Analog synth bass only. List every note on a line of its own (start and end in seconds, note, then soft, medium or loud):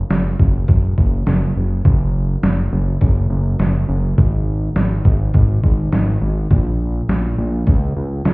0.11 0.36 F#1 medium
0.40 0.65 F#1 medium
0.69 0.94 F#1 medium
0.98 1.24 F#1 loud
1.27 1.53 F#1 loud
1.57 1.82 F#1 medium
1.85 2.36 F#1 loud
2.43 2.69 F#1 medium
2.72 2.98 F#1 loud
3.02 3.27 F#1 loud
3.30 3.56 F#1 loud
3.59 3.85 F#1 medium
3.89 4.14 F#1 loud
4.18 4.69 G#1 loud
4.76 5.02 G#1 medium
5.05 5.31 G#1 loud
5.34 5.60 G#1 loud
5.64 5.89 G#1 medium
5.92 6.18 G#1 loud
6.21 6.47 G#1 medium
6.51 7.02 A#1 loud
7.09 7.35 A#1 medium
7.38 7.64 A#1 loud
7.67 7.93 C#2 loud
7.96 8.22 C#2 medium
8.25 8.34 C#2 medium